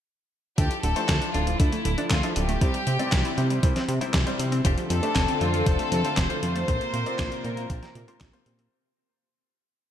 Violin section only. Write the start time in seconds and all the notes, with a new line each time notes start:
0.59 G4
0.84 A4
1.35 F4
1.60 E4
2.11 F4
2.36 G4
4.65 G4
4.91 A4
5.41 F4
5.67 A4
6.18 C5
6.43 C5